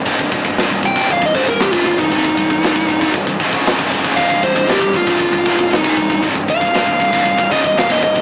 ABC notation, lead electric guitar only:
X:1
M:4/4
L:1/16
Q:1/4=117
K:Cm
V:1 name="Lead electric guitar"
z6 g2 f e c B G F F E | E8 z8 | f2 c2 G2 F6 E4 | z2 f8 e e f e e2 |]